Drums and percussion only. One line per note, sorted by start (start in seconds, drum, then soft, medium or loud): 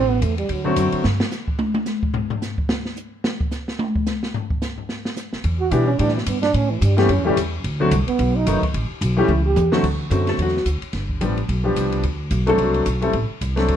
0.22 kick soft
0.22 hi-hat pedal medium
0.22 ride medium
0.38 ride soft
0.49 kick soft
0.49 ride medium
0.76 kick soft
0.76 hi-hat pedal medium
0.76 ride medium
0.92 ride soft
1.04 snare medium
1.20 snare loud
1.31 snare soft
1.31 hi-hat pedal medium
1.48 kick medium
1.59 high tom loud
1.74 high tom loud
1.86 snare soft
1.86 hi-hat pedal medium
2.03 kick medium
2.14 floor tom loud
2.30 floor tom loud
2.42 snare soft
2.42 hi-hat pedal medium
2.58 kick medium
2.69 snare loud
2.85 snare soft
2.96 hi-hat pedal medium
3.24 snare medium
3.41 kick medium
3.51 snare soft
3.51 hi-hat pedal medium
3.68 snare soft
3.79 high tom loud
3.96 kick medium
4.06 snare soft
4.06 hi-hat pedal medium
4.23 snare medium
4.34 floor tom medium
4.50 kick medium
4.62 snare medium
4.62 hi-hat pedal medium
4.78 floor tom soft
4.89 snare soft
5.05 snare medium
5.16 snare soft
5.16 hi-hat pedal medium
5.33 snare soft
5.44 kick soft
5.44 ride medium
5.71 kick soft
5.71 hi-hat pedal medium
5.71 ride medium
5.99 kick soft
5.99 ride medium
6.08 snare soft
6.18 snare medium
6.26 kick soft
6.26 hi-hat pedal medium
6.26 ride medium
6.43 snare medium
6.43 ride soft
6.54 kick soft
6.54 ride medium
6.82 kick soft
6.82 hi-hat pedal medium
6.82 ride medium
6.98 snare medium
6.98 ride medium
7.09 kick soft
7.09 ride medium
7.37 kick soft
7.37 hi-hat pedal medium
7.37 ride medium
7.64 kick soft
7.64 ride medium
7.91 kick soft
7.91 hi-hat pedal medium
7.91 ride medium
8.08 ride medium
8.19 kick soft
8.19 ride medium
8.46 kick soft
8.46 hi-hat pedal medium
8.46 ride medium
8.63 kick medium
8.63 ride medium
8.74 kick soft
8.74 ride medium
9.01 kick soft
9.01 hi-hat pedal medium
9.01 ride medium
9.29 mid tom medium
9.56 hi-hat pedal medium
9.56 mid tom medium
9.72 snare medium
9.84 kick medium
9.84 crash medium
10.11 kick soft
10.11 hi-hat pedal medium
10.11 ride medium
10.27 snare soft
10.27 ride soft
10.38 kick soft
10.38 ride medium
10.48 snare soft
10.57 snare soft
10.66 kick soft
10.66 hi-hat pedal medium
10.66 ride medium
10.82 ride soft
10.93 kick soft
10.93 snare soft
10.93 ride medium
11.09 kick medium
11.21 kick soft
11.21 hi-hat pedal soft
11.21 ride medium
11.37 ride soft
11.49 kick soft
11.49 ride medium
11.76 kick soft
11.76 hi-hat pedal medium
11.76 ride medium
11.92 ride soft
12.03 kick soft
12.03 ride medium
12.31 kick soft
12.31 hi-hat pedal medium
12.31 ride medium
12.47 ride soft
12.58 kick soft
12.58 ride medium
12.74 ride soft
12.86 kick soft
12.86 hi-hat pedal medium
12.86 ride medium
13.02 ride soft
13.13 kick soft
13.13 ride soft
13.41 kick soft
13.41 hi-hat pedal medium
13.41 ride medium
13.57 snare soft
13.57 ride soft
13.68 kick soft
13.68 ride medium